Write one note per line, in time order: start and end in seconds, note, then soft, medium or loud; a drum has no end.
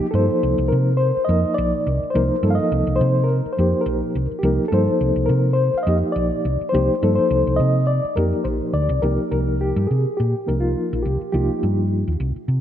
0.11 0.27 G2 medium
0.11 0.91 F3 medium
0.11 0.91 A#3 medium
0.11 0.91 D#4 medium
0.11 0.66 A4 medium
0.15 0.92 C5 medium
0.30 muted fingered electric bass stroke soft
0.43 0.57 C2 medium
0.58 0.70 C2 medium
0.68 1.11 C3 medium
0.68 0.99 A#4 medium
0.97 1.28 C5 medium
1.17 muted fingered electric bass stroke soft
1.25 1.85 F3 medium
1.25 1.86 A#3 soft
1.25 1.53 D#5 medium
1.29 1.42 F2 loud
1.29 1.86 D#4 medium
1.29 1.86 A#4 medium
1.45 muted fingered electric bass stroke soft
1.54 1.72 A#1 loud
1.54 2.15 D5 medium
1.87 2.00 C2 medium
2.03 muted fingered electric bass stroke soft
2.10 2.34 F3 medium
2.10 2.47 C5 medium
2.15 2.29 C2 loud
2.15 2.35 A#3 medium
2.15 2.35 D#4 medium
2.15 2.35 A#4 medium
2.42 2.57 G2 medium
2.42 3.20 F3 medium
2.42 3.20 A#3 medium
2.42 3.21 D#4 medium
2.42 3.21 A4 medium
2.50 2.59 F5 medium
2.55 3.00 D#5 medium
2.55 muted fingered electric bass stroke soft
2.72 2.86 C2 medium
2.87 2.99 C2 medium
2.96 3.28 C5 medium
3.01 3.40 C3 medium
3.24 3.56 A#4 medium
3.46 muted fingered electric bass stroke soft
3.53 3.85 C5 medium
3.58 3.72 F2 loud
3.58 4.15 F3 medium
3.58 4.15 A#3 medium
3.58 4.16 D#4 soft
3.58 4.16 G4 medium
3.73 muted fingered electric bass stroke soft
3.81 4.25 A#4 medium
3.86 4.00 A#1 medium
4.15 4.29 C2 medium
4.31 muted fingered electric bass stroke soft
4.39 4.71 G4 medium
4.43 4.57 C2 loud
4.43 4.64 F3 medium
4.43 4.64 A#3 medium
4.43 4.64 D#4 medium
4.43 4.64 A#4 medium
4.68 5.49 F3 medium
4.68 5.50 A#3 medium
4.68 5.30 A4 medium
4.72 4.86 G2 medium
4.72 5.50 D#4 medium
4.72 5.50 C5 medium
4.88 muted fingered electric bass stroke soft
5.01 5.15 C2 medium
5.16 5.28 C2 medium
5.26 5.69 C3 medium
5.26 5.55 A#4 medium
5.53 5.77 C5 medium
5.74 5.86 F5 medium
5.74 muted fingered electric bass stroke soft
5.83 6.01 F2 loud
5.83 6.44 F3 soft
5.83 6.44 A#3 soft
5.83 5.97 D#5 medium
5.88 6.45 D#4 medium
5.88 6.45 G4 medium
6.03 muted fingered electric bass stroke soft
6.12 6.30 A#1 medium
6.12 6.68 D5 medium
6.45 6.59 C2 medium
6.61 muted fingered electric bass stroke soft
6.69 6.93 F3 medium
6.69 7.13 C5 medium
6.73 6.88 C2 loud
6.73 6.93 A#3 medium
6.73 6.94 D#4 medium
6.73 6.94 G4 medium
7.02 7.16 G2 medium
7.02 7.79 F3 medium
7.02 7.79 A#3 medium
7.02 7.80 D#4 medium
7.02 7.80 A4 medium
7.15 7.60 C5 medium
7.15 muted fingered electric bass stroke soft
7.31 7.45 C2 medium
7.47 7.58 C2 medium
7.56 7.99 C3 medium
7.56 7.85 D#5 medium
7.87 8.14 D5 medium
8.04 muted fingered electric bass stroke soft
8.16 8.31 F2 loud
8.16 8.74 F3 medium
8.16 8.74 A#3 soft
8.16 8.75 D#4 soft
8.16 8.75 G4 medium
8.16 8.46 A#4 medium
8.33 muted fingered electric bass stroke soft
8.44 8.59 A#1 medium
8.44 8.46 C5 medium
8.73 8.88 D2 medium
8.73 9.01 D5 medium
8.89 9.01 C2 medium
9.02 9.17 C2 medium
9.02 9.80 F3 medium
9.02 9.81 A#3 medium
9.02 9.81 D#4 medium
9.02 9.60 G4 medium
9.02 9.30 A#4 medium
9.31 9.71 C2 medium
9.31 9.59 A#4 medium
9.61 9.91 G4 medium
9.76 9.88 G2 medium
9.87 10.04 C3 medium
9.87 10.18 G#4 medium
10.17 10.33 A#2 medium
10.17 10.59 G4 medium
10.46 10.73 C2 medium
10.46 11.04 F3 soft
10.46 11.04 A#3 soft
10.46 11.05 D#4 soft
10.46 11.05 A#4 medium
10.60 11.05 F4 medium
10.93 11.04 A#1 medium
11.03 11.19 C2 medium
11.03 11.31 G4 medium
11.21 muted fingered electric bass stroke soft
11.32 11.48 C2 medium
11.32 12.11 F3 medium
11.32 12.11 A#3 medium
11.32 12.11 D#4 medium
11.32 12.12 F4 medium
11.32 11.87 G4 medium
11.63 12.02 G2 medium
12.08 12.19 D#2 medium
12.20 12.34 C2 medium
12.36 muted fingered electric bass stroke soft
12.48 12.61 C3 medium